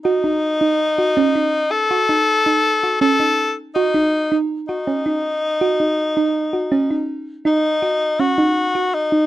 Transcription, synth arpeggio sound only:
X:1
M:5/4
L:1/8
Q:1/4=162
K:Bmix
V:1 name="Synth arpeggio sound"
F D2 D2 F C D2 z | F D2 D2 F C D2 z | F D2 D2 F C D2 z | F D2 D2 F C D2 z |
D2 F2 C D2 F2 D |]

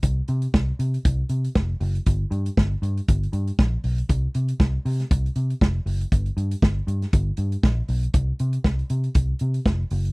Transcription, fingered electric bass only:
X:1
M:4/4
L:1/8
Q:"Swing 16ths" 1/4=118
K:Cdor
V:1 name="Fingered electric bass" clef=bass
C,, C, C,, C, C,, C, F,,, ^F,,, | G,,, G,, G,,, G,, G,,, G,, B,,, =B,,, | C,, C, C,, C, C,, C, F,,, ^F,,, | G,,, G,, G,,, G,, G,,, G,, B,,, =B,,, |
C,, C, C,, C, C,, C, F,,, ^F,,, |]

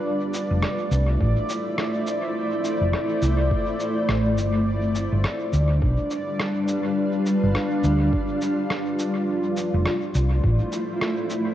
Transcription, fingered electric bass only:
X:1
M:4/4
L:1/16
Q:"Swing 16ths" 1/4=104
K:Flyd
V:1 name="Fingered electric bass" clef=bass
z3 F,,, z2 C,,2 A,,, z6 z | z3 F,,, z2 C,,2 z4 A,,,2 G,,,2- | G,,,3 G,,, z2 D,,2 B,,, z6 z | z3 G,,, z2 D,,2 z8 |
z3 F,,, z2 C,,2 A,,, z6 z |]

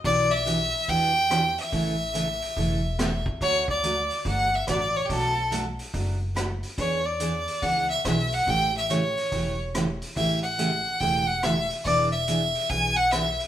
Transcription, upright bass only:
X:1
M:4/4
L:1/8
Q:"Swing" 1/4=142
K:Amix
V:1 name="Upright bass" clef=bass
B,,,4 E,,4 | A,,,4 E,,,4 | D,,4 G,,,2 A,,,2 | B,,,4 F,,,4 |
E,,4 C,,2 B,,,2 | A,,,4 E,,,4 | A,,,4 E,,,4 | E,,,4 B,,,4 |]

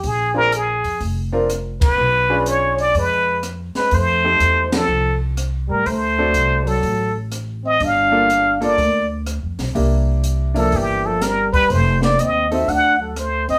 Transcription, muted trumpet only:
X:1
M:4/4
L:1/8
Q:"Swing" 1/4=123
K:Cdor
V:1 name="Muted trumpet"
_A B A2 z3 =B- | =B2 _d =d B2 z B | c3 A2 z2 B | c3 A2 z2 e |
f3 d2 z3 | z3 A G A B =B | c d e =e _g A c _e |]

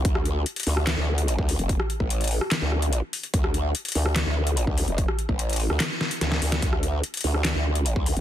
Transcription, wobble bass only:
X:1
M:4/4
L:1/16
Q:1/4=146
K:Dm
V:1 name="Wobble bass" clef=bass
D,,4 z2 D,,3 D,,4 D,,2 F,,,- | F,,, z2 A,,,4 z2 D,,4 z3 | D,,4 z2 D,,3 D,,4 D,,2 F,,,- | F,,, z2 A,,,4 D,, z4 D,,2 D,,2 |
D,,4 z2 D,,3 D,,4 D,,2 F,,, |]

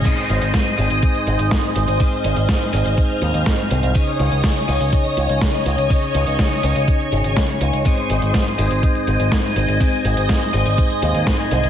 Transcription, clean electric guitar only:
X:1
M:4/4
L:1/8
Q:1/4=123
K:Ab
V:1 name="Clean electric guitar"
[A,,CEAe]3 [A,,CEAe]4- [A,,CEAe] | [A,,CEAe]3 [A,,CEAe]4- [A,,CEAe] | [D,DEAe]3 [D,DEAe]4- [D,DEAe] | [D,DEAe]3 [D,DEAe]4- [D,DEAe] |
[A,,CEAe]3 [A,,CEAe]4- [A,,CEAe] | [A,,CEAe]3 [A,,CEAe]4- [A,,CEAe] |]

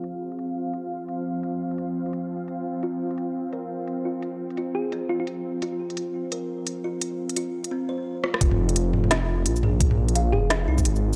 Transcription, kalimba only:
X:1
M:4/4
L:1/8
Q:"Swing 16ths" 1/4=172
K:Fm
V:1 name="Kalimba"
z8 | z8 | F4 B3 F | z2 F2 C F3 |
F4 B3 F | z2 F2 C c z F | F z3 F z2 A | z2 f z2 E3 |]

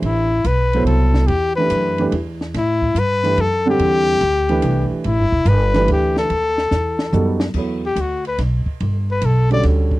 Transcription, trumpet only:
X:1
M:3/4
L:1/8
Q:"Swing" 1/4=144
K:Ador
V:1 name="Trumpet"
E2 B2 A2 | G B3 z2 | E2 B2 A G- | G4- G z |
E2 B2 G A- | A4- A z | [K:Edor] z G F B z2 | z B A d z2 |]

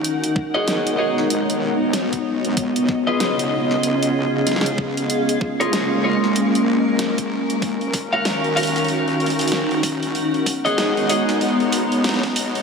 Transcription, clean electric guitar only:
X:1
M:4/4
L:1/16
Q:"Swing 16ths" 1/4=95
K:Cblyd
V:1 name="Clean electric guitar"
z3 [^F^Gd^d]3 [FG_d^d]2 z8 | z3 [FAce]2 z8 z3 | z3 [FABd]3 [FABd]2 z8 | z3 [GBdf]2 z [GBdf]2 z8 |
z3 [^F^Gd^d]3 [FG_d^d]2 z8 |]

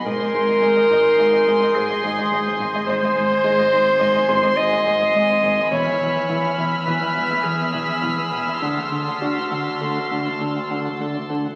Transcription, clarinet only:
X:1
M:5/4
L:1/8
Q:1/4=105
K:Abm
V:1 name="Clarinet"
B6 A4 | =c6 e4 | d3 z =B2 ^G4 | A2 ^F6 z2 |]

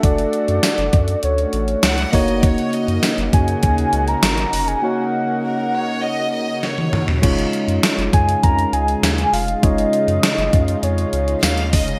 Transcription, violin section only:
X:1
M:4/4
L:1/16
Q:1/4=100
K:C#mix
V:1 name="Violin section"
z12 f2 d2 | c2 d3 z8 z3 | z4 A2 c2 d2 d2 c4 | z16 |
z12 e2 d2 |]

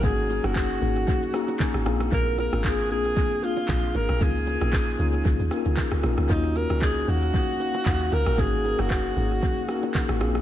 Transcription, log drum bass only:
X:1
M:4/4
L:1/16
Q:"Swing 16ths" 1/4=115
K:Abmix
V:1 name="Log drum bass" clef=bass
A,,,3 G,,,3 A,,,2 z4 z A,,, B,,,2 | B,,,3 A,,,3 B,,,2 z4 B,,,2 A,,, B,,, | D,,3 B,,,3 D,,2 D,, E,, z D,, z D,, B,,, D,, | E,,3 D,,3 E,,2 z4 E,,2 D,, B,,, |
A,,,3 G,,,3 A,,,2 z4 z A,,, B,,,2 |]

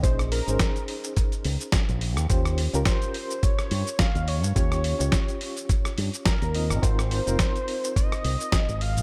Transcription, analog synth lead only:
X:1
M:4/4
L:1/8
Q:"Swing 16ths" 1/4=106
K:Ebmix
V:1 name="Analog synth lead"
c B2 z4 z | z2 c2 d2 f d | d4 z2 B2 | c4 e3 f |]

